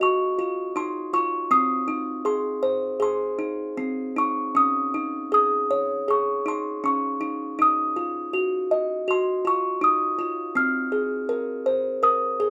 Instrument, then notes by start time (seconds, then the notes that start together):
music box
Already playing: F4 D#5
0.01 F#4 C#6
0.39 F4
0.76 D#4 C6
1.13 F4 C#6
1.51 C4 D#6
1.88 D#4
2.25 G#4 C6
2.63 C5
3.00 G#4 C6
3.39 D#4
3.77 C4
4.16 D#4 C#6
4.55 C#4 D#6
4.94 D#4
5.32 G#4 D#6
5.71 C#5
6.08 G#4 C#6
6.46 D#4 C6
6.84 C#4 C#6
7.21 D#4
7.59 D#4 D#6
7.96 F4
8.33 F#4
8.71 D#5
9.08 F#4 C6
9.45 F4 C#6
9.81 D#4 D#6
10.19 F4
10.55 C4 F6
10.92 G#4
11.29 A#4
11.66 C5
12.03 A#4 D#6
12.40 G#4